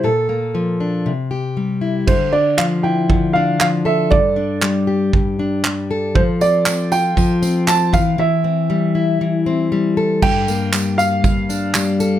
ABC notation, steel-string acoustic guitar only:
X:1
M:4/4
L:1/8
Q:"Swing 16ths" 1/4=118
K:Gdor
V:1 name="Steel-string acoustic guitar"
[B,,A] B, F, D C, G G, E | D, D F, E D, D F, A | G,, D G, G G,, D G, A | F, C C F F, C C E, |
E, C G, E E, C G, A | G,, B, G,2 G,, D G, A |]